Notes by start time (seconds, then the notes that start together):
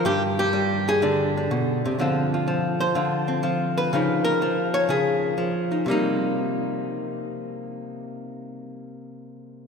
0.05 G2 G4
0.39 G4
0.53 G3
0.89 G#4
1.02 D3 D4
1.37 D4
1.51 B2
1.85 C3
1.99 D3 F3 C4 F4
2.34 F4
2.48 F3
2.80 C5
2.95 D3 F4
3.28 C4
3.43 F3 F4
3.78 B4
3.93 C#3 F3 D#4 F4
4.25 A#4
4.42 F3
4.74 C#5
4.89 C#3 G#4
5.38 F3
5.72 D#4
5.86 C3 G3 A#3
5.91 D#4